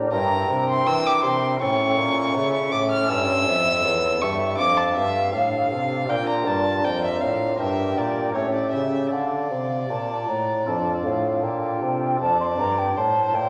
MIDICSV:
0, 0, Header, 1, 5, 480
1, 0, Start_track
1, 0, Key_signature, -1, "minor"
1, 0, Tempo, 747198
1, 72, Time_signature, 4, 2, 24, 8
1, 4393, Tempo, 764331
1, 8571, End_track
2, 0, Start_track
2, 0, Title_t, "Violin"
2, 0, Program_c, 0, 40
2, 77, Note_on_c, 0, 82, 95
2, 406, Note_off_c, 0, 82, 0
2, 445, Note_on_c, 0, 84, 89
2, 557, Note_on_c, 0, 88, 105
2, 566, Note_off_c, 0, 84, 0
2, 684, Note_on_c, 0, 86, 91
2, 694, Note_off_c, 0, 88, 0
2, 794, Note_off_c, 0, 86, 0
2, 799, Note_on_c, 0, 84, 89
2, 1026, Note_off_c, 0, 84, 0
2, 1038, Note_on_c, 0, 85, 100
2, 1746, Note_on_c, 0, 86, 88
2, 1756, Note_off_c, 0, 85, 0
2, 1864, Note_off_c, 0, 86, 0
2, 1870, Note_on_c, 0, 89, 90
2, 1980, Note_on_c, 0, 88, 111
2, 1990, Note_off_c, 0, 89, 0
2, 2705, Note_on_c, 0, 85, 86
2, 2714, Note_off_c, 0, 88, 0
2, 2935, Note_off_c, 0, 85, 0
2, 2939, Note_on_c, 0, 86, 98
2, 3064, Note_on_c, 0, 81, 81
2, 3073, Note_off_c, 0, 86, 0
2, 3178, Note_off_c, 0, 81, 0
2, 3182, Note_on_c, 0, 76, 88
2, 3427, Note_on_c, 0, 77, 74
2, 3437, Note_off_c, 0, 76, 0
2, 3913, Note_on_c, 0, 79, 91
2, 3922, Note_off_c, 0, 77, 0
2, 4031, Note_off_c, 0, 79, 0
2, 4041, Note_on_c, 0, 82, 72
2, 4154, Note_on_c, 0, 81, 80
2, 4163, Note_off_c, 0, 82, 0
2, 4395, Note_on_c, 0, 79, 85
2, 4404, Note_off_c, 0, 81, 0
2, 4511, Note_off_c, 0, 79, 0
2, 4522, Note_on_c, 0, 76, 68
2, 4622, Note_on_c, 0, 77, 71
2, 4632, Note_off_c, 0, 76, 0
2, 4863, Note_off_c, 0, 77, 0
2, 4867, Note_on_c, 0, 76, 75
2, 5106, Note_on_c, 0, 74, 72
2, 5115, Note_off_c, 0, 76, 0
2, 5336, Note_off_c, 0, 74, 0
2, 5340, Note_on_c, 0, 73, 65
2, 5459, Note_off_c, 0, 73, 0
2, 5463, Note_on_c, 0, 74, 66
2, 5566, Note_off_c, 0, 74, 0
2, 5570, Note_on_c, 0, 76, 64
2, 5812, Note_off_c, 0, 76, 0
2, 5815, Note_on_c, 0, 74, 76
2, 7489, Note_off_c, 0, 74, 0
2, 7752, Note_on_c, 0, 74, 84
2, 8238, Note_on_c, 0, 72, 68
2, 8248, Note_off_c, 0, 74, 0
2, 8571, Note_off_c, 0, 72, 0
2, 8571, End_track
3, 0, Start_track
3, 0, Title_t, "Flute"
3, 0, Program_c, 1, 73
3, 0, Note_on_c, 1, 74, 74
3, 73, Note_off_c, 1, 74, 0
3, 78, Note_on_c, 1, 79, 83
3, 1302, Note_off_c, 1, 79, 0
3, 1509, Note_on_c, 1, 76, 69
3, 1989, Note_on_c, 1, 73, 66
3, 1999, Note_off_c, 1, 76, 0
3, 2228, Note_on_c, 1, 76, 74
3, 2238, Note_off_c, 1, 73, 0
3, 2459, Note_off_c, 1, 76, 0
3, 2463, Note_on_c, 1, 73, 69
3, 2705, Note_on_c, 1, 76, 70
3, 2715, Note_off_c, 1, 73, 0
3, 2944, Note_on_c, 1, 77, 80
3, 2953, Note_off_c, 1, 76, 0
3, 3908, Note_off_c, 1, 77, 0
3, 3912, Note_on_c, 1, 74, 73
3, 4849, Note_off_c, 1, 74, 0
3, 4871, Note_on_c, 1, 79, 69
3, 5336, Note_off_c, 1, 79, 0
3, 5343, Note_on_c, 1, 76, 57
3, 5650, Note_off_c, 1, 76, 0
3, 5816, Note_on_c, 1, 77, 59
3, 6234, Note_off_c, 1, 77, 0
3, 6314, Note_on_c, 1, 81, 66
3, 6538, Note_off_c, 1, 81, 0
3, 6549, Note_on_c, 1, 82, 66
3, 6787, Note_off_c, 1, 82, 0
3, 6798, Note_on_c, 1, 81, 66
3, 7026, Note_off_c, 1, 81, 0
3, 7030, Note_on_c, 1, 77, 70
3, 7281, Note_on_c, 1, 79, 73
3, 7290, Note_off_c, 1, 77, 0
3, 7760, Note_off_c, 1, 79, 0
3, 7764, Note_on_c, 1, 81, 95
3, 7879, Note_off_c, 1, 81, 0
3, 7890, Note_on_c, 1, 84, 80
3, 7928, Note_off_c, 1, 84, 0
3, 8003, Note_on_c, 1, 82, 87
3, 8129, Note_on_c, 1, 79, 88
3, 8138, Note_off_c, 1, 82, 0
3, 8238, Note_off_c, 1, 79, 0
3, 8242, Note_on_c, 1, 81, 88
3, 8482, Note_on_c, 1, 79, 84
3, 8492, Note_off_c, 1, 81, 0
3, 8571, Note_off_c, 1, 79, 0
3, 8571, End_track
4, 0, Start_track
4, 0, Title_t, "Pipe organ"
4, 0, Program_c, 2, 19
4, 79, Note_on_c, 2, 43, 56
4, 79, Note_on_c, 2, 62, 45
4, 86, Note_on_c, 2, 64, 48
4, 87, Note_on_c, 2, 70, 44
4, 289, Note_off_c, 2, 43, 0
4, 317, Note_on_c, 2, 48, 55
4, 527, Note_off_c, 2, 48, 0
4, 557, Note_on_c, 2, 52, 60
4, 766, Note_off_c, 2, 52, 0
4, 793, Note_on_c, 2, 48, 56
4, 1002, Note_off_c, 2, 62, 0
4, 1004, Note_off_c, 2, 48, 0
4, 1005, Note_off_c, 2, 64, 0
4, 1006, Note_off_c, 2, 70, 0
4, 1034, Note_on_c, 2, 61, 40
4, 1037, Note_on_c, 2, 45, 52
4, 1039, Note_on_c, 2, 64, 41
4, 1042, Note_on_c, 2, 69, 40
4, 1246, Note_off_c, 2, 45, 0
4, 1273, Note_on_c, 2, 46, 56
4, 1484, Note_off_c, 2, 46, 0
4, 1513, Note_on_c, 2, 49, 55
4, 1724, Note_off_c, 2, 49, 0
4, 1750, Note_on_c, 2, 45, 52
4, 1961, Note_off_c, 2, 61, 0
4, 1962, Note_off_c, 2, 45, 0
4, 1964, Note_off_c, 2, 64, 0
4, 1965, Note_off_c, 2, 69, 0
4, 1989, Note_on_c, 2, 61, 42
4, 1993, Note_on_c, 2, 43, 51
4, 1993, Note_on_c, 2, 64, 44
4, 1999, Note_on_c, 2, 69, 43
4, 2201, Note_off_c, 2, 61, 0
4, 2203, Note_off_c, 2, 43, 0
4, 2234, Note_on_c, 2, 41, 58
4, 2444, Note_off_c, 2, 41, 0
4, 2468, Note_on_c, 2, 40, 58
4, 2682, Note_off_c, 2, 40, 0
4, 2709, Note_on_c, 2, 43, 51
4, 2922, Note_off_c, 2, 43, 0
4, 2923, Note_off_c, 2, 64, 0
4, 2926, Note_off_c, 2, 69, 0
4, 2949, Note_on_c, 2, 41, 50
4, 2950, Note_on_c, 2, 62, 38
4, 2956, Note_on_c, 2, 69, 37
4, 3163, Note_off_c, 2, 41, 0
4, 3185, Note_on_c, 2, 43, 51
4, 3401, Note_off_c, 2, 43, 0
4, 3429, Note_on_c, 2, 45, 53
4, 3644, Note_off_c, 2, 45, 0
4, 3670, Note_on_c, 2, 48, 49
4, 3885, Note_off_c, 2, 48, 0
4, 3885, Note_off_c, 2, 62, 0
4, 3888, Note_off_c, 2, 69, 0
4, 3909, Note_on_c, 2, 62, 39
4, 3910, Note_on_c, 2, 46, 53
4, 3913, Note_on_c, 2, 65, 41
4, 3919, Note_on_c, 2, 70, 41
4, 4126, Note_off_c, 2, 46, 0
4, 4150, Note_on_c, 2, 43, 52
4, 4367, Note_off_c, 2, 43, 0
4, 4397, Note_on_c, 2, 41, 52
4, 4608, Note_off_c, 2, 41, 0
4, 4633, Note_on_c, 2, 45, 44
4, 4841, Note_off_c, 2, 62, 0
4, 4843, Note_off_c, 2, 65, 0
4, 4844, Note_off_c, 2, 45, 0
4, 4846, Note_off_c, 2, 70, 0
4, 4867, Note_on_c, 2, 62, 34
4, 4869, Note_on_c, 2, 43, 43
4, 4871, Note_on_c, 2, 67, 34
4, 4873, Note_on_c, 2, 70, 35
4, 5082, Note_off_c, 2, 43, 0
4, 5101, Note_on_c, 2, 46, 44
4, 5317, Note_off_c, 2, 46, 0
4, 5318, Note_off_c, 2, 62, 0
4, 5320, Note_off_c, 2, 67, 0
4, 5321, Note_off_c, 2, 70, 0
4, 5341, Note_on_c, 2, 45, 43
4, 5342, Note_on_c, 2, 61, 36
4, 5345, Note_on_c, 2, 67, 35
4, 5348, Note_on_c, 2, 69, 35
4, 5558, Note_off_c, 2, 45, 0
4, 5582, Note_on_c, 2, 49, 42
4, 5800, Note_off_c, 2, 61, 0
4, 5801, Note_off_c, 2, 49, 0
4, 5802, Note_off_c, 2, 67, 0
4, 5803, Note_off_c, 2, 69, 0
4, 5824, Note_on_c, 2, 50, 45
4, 6044, Note_off_c, 2, 50, 0
4, 6072, Note_on_c, 2, 48, 45
4, 6289, Note_off_c, 2, 48, 0
4, 6317, Note_on_c, 2, 46, 43
4, 6532, Note_off_c, 2, 46, 0
4, 6556, Note_on_c, 2, 45, 45
4, 6772, Note_off_c, 2, 45, 0
4, 6795, Note_on_c, 2, 41, 41
4, 6795, Note_on_c, 2, 62, 34
4, 6795, Note_on_c, 2, 65, 33
4, 6800, Note_on_c, 2, 69, 36
4, 7011, Note_off_c, 2, 41, 0
4, 7031, Note_on_c, 2, 45, 42
4, 7250, Note_off_c, 2, 45, 0
4, 7269, Note_on_c, 2, 46, 44
4, 7491, Note_off_c, 2, 46, 0
4, 7517, Note_on_c, 2, 48, 41
4, 7735, Note_off_c, 2, 48, 0
4, 7735, Note_off_c, 2, 65, 0
4, 7736, Note_off_c, 2, 62, 0
4, 7738, Note_off_c, 2, 69, 0
4, 7762, Note_on_c, 2, 41, 54
4, 7976, Note_off_c, 2, 41, 0
4, 7994, Note_on_c, 2, 43, 58
4, 8210, Note_off_c, 2, 43, 0
4, 8238, Note_on_c, 2, 45, 56
4, 8451, Note_off_c, 2, 45, 0
4, 8466, Note_on_c, 2, 46, 52
4, 8571, Note_off_c, 2, 46, 0
4, 8571, End_track
5, 0, Start_track
5, 0, Title_t, "Bassoon"
5, 0, Program_c, 3, 70
5, 0, Note_on_c, 3, 45, 62
5, 66, Note_off_c, 3, 45, 0
5, 69, Note_on_c, 3, 43, 69
5, 311, Note_on_c, 3, 48, 64
5, 321, Note_off_c, 3, 43, 0
5, 546, Note_off_c, 3, 48, 0
5, 550, Note_on_c, 3, 52, 65
5, 781, Note_off_c, 3, 52, 0
5, 789, Note_on_c, 3, 48, 69
5, 1021, Note_off_c, 3, 48, 0
5, 1027, Note_on_c, 3, 45, 70
5, 1268, Note_on_c, 3, 46, 66
5, 1277, Note_off_c, 3, 45, 0
5, 1511, Note_on_c, 3, 49, 69
5, 1520, Note_off_c, 3, 46, 0
5, 1743, Note_on_c, 3, 45, 66
5, 1753, Note_off_c, 3, 49, 0
5, 1979, Note_off_c, 3, 45, 0
5, 1983, Note_on_c, 3, 43, 72
5, 2217, Note_off_c, 3, 43, 0
5, 2230, Note_on_c, 3, 41, 65
5, 2461, Note_off_c, 3, 41, 0
5, 2466, Note_on_c, 3, 40, 65
5, 2700, Note_off_c, 3, 40, 0
5, 2711, Note_on_c, 3, 43, 66
5, 2950, Note_on_c, 3, 41, 68
5, 2959, Note_off_c, 3, 43, 0
5, 3183, Note_off_c, 3, 41, 0
5, 3187, Note_on_c, 3, 43, 66
5, 3425, Note_on_c, 3, 45, 62
5, 3434, Note_off_c, 3, 43, 0
5, 3670, Note_on_c, 3, 48, 61
5, 3680, Note_off_c, 3, 45, 0
5, 3910, Note_on_c, 3, 46, 70
5, 3920, Note_off_c, 3, 48, 0
5, 4149, Note_on_c, 3, 43, 63
5, 4158, Note_off_c, 3, 46, 0
5, 4383, Note_off_c, 3, 43, 0
5, 4387, Note_on_c, 3, 41, 59
5, 4621, Note_off_c, 3, 41, 0
5, 4627, Note_on_c, 3, 45, 61
5, 4860, Note_on_c, 3, 43, 63
5, 4869, Note_off_c, 3, 45, 0
5, 5104, Note_on_c, 3, 46, 59
5, 5113, Note_off_c, 3, 43, 0
5, 5335, Note_on_c, 3, 45, 56
5, 5344, Note_off_c, 3, 46, 0
5, 5575, Note_off_c, 3, 45, 0
5, 5579, Note_on_c, 3, 49, 53
5, 5819, Note_off_c, 3, 49, 0
5, 5823, Note_on_c, 3, 50, 59
5, 6064, Note_off_c, 3, 50, 0
5, 6066, Note_on_c, 3, 48, 50
5, 6306, Note_off_c, 3, 48, 0
5, 6310, Note_on_c, 3, 46, 48
5, 6548, Note_off_c, 3, 46, 0
5, 6555, Note_on_c, 3, 45, 54
5, 6790, Note_off_c, 3, 45, 0
5, 6799, Note_on_c, 3, 41, 54
5, 7033, Note_off_c, 3, 41, 0
5, 7036, Note_on_c, 3, 45, 54
5, 7276, Note_on_c, 3, 46, 54
5, 7285, Note_off_c, 3, 45, 0
5, 7519, Note_off_c, 3, 46, 0
5, 7522, Note_on_c, 3, 48, 52
5, 7757, Note_off_c, 3, 48, 0
5, 7761, Note_on_c, 3, 41, 71
5, 8003, Note_on_c, 3, 43, 65
5, 8012, Note_off_c, 3, 41, 0
5, 8239, Note_off_c, 3, 43, 0
5, 8242, Note_on_c, 3, 45, 60
5, 8476, Note_on_c, 3, 46, 67
5, 8485, Note_off_c, 3, 45, 0
5, 8571, Note_off_c, 3, 46, 0
5, 8571, End_track
0, 0, End_of_file